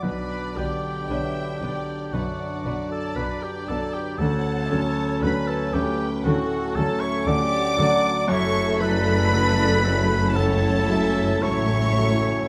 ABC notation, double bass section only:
X:1
M:4/4
L:1/8
Q:1/4=58
K:Bm
V:1 name="Double bass section" clef=bass
B,,, B,,, B,,, B,,, B,,, B,,, B,,, B,,, | D,, D,, D,, D,, D,, D,, D,, D,, | F,,,6 A,,,2 |]